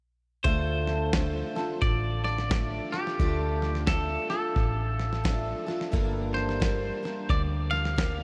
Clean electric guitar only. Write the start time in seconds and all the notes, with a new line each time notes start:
0.44 C5
1.82 D5
2.24 D5
2.92 G4
3.88 A4
4.30 A4
6.34 C5
7.30 D5
7.71 F5